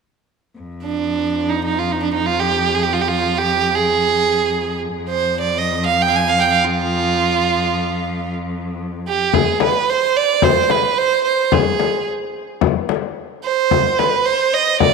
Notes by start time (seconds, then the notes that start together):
0.59 F2
0.83 D4
1.49 D#4
1.65 D#4
1.79 F4
1.92 D#4
2.03 D4
2.14 D#4
2.26 F4
2.40 G4
2.75 G#4
2.83 G4
2.93 F4
3.01 G4
3.08 F4
3.37 G4
3.75 G#4
4.96 F2
5.10 C5
5.41 D5
5.58 D#5
5.86 F5
6.02 G5
6.08 F5 G5
6.16 G#5
6.29 F5
6.40 G5
6.51 F5
6.65 F4
9.08 G4
9.33 G#4, frame drum
9.60 B4, frame drum
9.89 C5
10.16 D5
10.42 C5, frame drum
10.70 B4, frame drum
10.98 C5
11.24 C5
11.52 G#4, frame drum
11.80 frame drum
12.61 frame drum
12.89 frame drum
13.45 C5
13.71 frame drum
13.99 B4, frame drum
14.26 C5
14.54 D#5
14.80 D5, frame drum